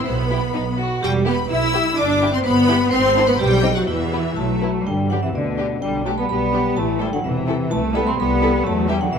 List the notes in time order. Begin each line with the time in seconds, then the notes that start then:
0.05 B1 B3 B4 B5
0.30 E4 G4
0.54 B1 D#4
0.78 F#4
1.02 E1 G3 G4 G5
1.25 B3 E4 G4 B4 B5
1.50 B1 E4 E5 E6
1.73 E4 G4
1.96 G1 D4 D5 D6
2.21 E4 G4
2.31 C4 C5 C6
2.43 G1 B3 B4 B5
2.68 E4 G4
2.91 G#1 C4 C5 C6
3.16 D4 E4
3.27 B3 B4 B5
3.38 B1 G3 G4 G5
3.63 C4 D#4
3.75 F#3 F#4 F#5
3.87 E2 E3 E4 E5
4.13 B3 E4
4.36 B1 F#3 A3 A5
4.62 B3 E4
4.85 G2 D3 G3 G5
5.09 D3 F#3 D4 G4 B4 F#5
5.21 C3 E3 E5
5.33 D2 B2 D3 D5
5.58 D4 G4 B4
5.81 B1 D3 G3 G5
6.05 F#3 A3 D4 G4 B4 A5
6.17 G3 B3 B5
6.29 B1 G3 B3 B5
6.53 D4 G4 B4
6.76 A1 E3 A3 A5
6.99 E3 G3 E4 A4 C5 G5
7.12 D3 F#3 F#5
7.24 E1 C3 E3 E5
7.47 E4 A4 C5
7.70 C2 E3 A3 A5
7.93 G3 B3 E4 A4 E5 B5
8.04 A3 C4 C6
8.17 C2 G3 B3 B5
8.41 E4 A4 E5
8.64 E2 F#3 A3 A5
8.87 E3 G3 E4 G4 E5 G5
9.00 D3 F#3 F#5
9.10 B1 B2 E3 E5